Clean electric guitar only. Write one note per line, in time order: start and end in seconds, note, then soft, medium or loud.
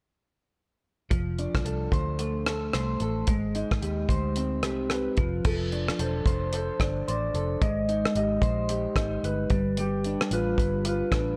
1.11 3.28 F3 medium
1.39 3.35 D4 medium
1.65 2.46 A4 soft
1.92 2.74 C5 medium
2.20 3.35 A3 medium
2.47 3.00 A4 medium
2.74 4.09 C5 medium
3.01 3.35 A4 medium
3.29 5.18 G#3 medium
3.55 5.24 D#4 medium
3.82 4.63 G4 medium
4.09 5.75 C5 soft
4.37 5.75 C4 medium
4.64 5.24 G4 medium
5.18 5.45 F3 medium
5.45 7.61 F3 medium
5.72 6.79 D4 medium
5.99 6.52 A4 medium
6.27 7.07 C5 medium
6.54 7.33 A4 medium
6.81 7.68 D4 medium
7.08 7.68 C5 medium
7.35 7.68 A4 medium
7.62 9.51 G#3 medium
7.89 8.96 D#4 medium
8.16 8.69 G4 medium
8.43 9.24 C5 medium
8.70 10.35 G4 medium
8.97 9.57 D#4 medium
9.51 9.78 G3 medium
9.79 11.37 G3 medium
10.06 11.12 D4 medium
10.32 10.85 F4 medium
10.59 11.37 B4 medium
10.86 11.37 F4 medium
11.12 11.37 D4 medium